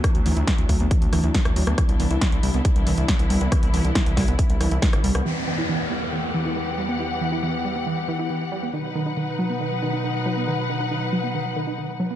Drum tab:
HH |xxoxxxoxxxoxxxox|xxoxxxoxxxoxxxox|xxoxxxoxxxoxxxox|----------------|
SD |r---o-----r-or-r|r---o-------o---|r---o-o---r-or-r|----------------|
BD |o---o-o-o---o---|o---o---o---o---|o---o-o-o---o---|----------------|

HH |----------------|----------------|----------------|
SD |----------------|----------------|----------------|
BD |----------------|----------------|----------------|